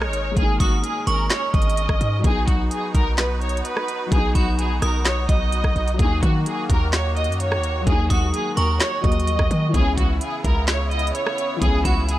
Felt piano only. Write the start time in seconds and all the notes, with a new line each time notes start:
Already playing: G#3 A#3 D#4
0.31 G#3
0.37 A#3
0.42 D#4
2.19 F#3
2.24 B3
2.30 D#4
4.07 F#3
4.12 B3
4.17 D#4
5.94 F#3
5.99 A#3
6.04 D#4
7.81 F#3
7.87 A#3
7.92 D#4
9.01 F#3 A#3
9.07 F#4
9.69 E3
9.74 B3
9.79 C#4
11.56 E3
11.62 B3
11.67 C#4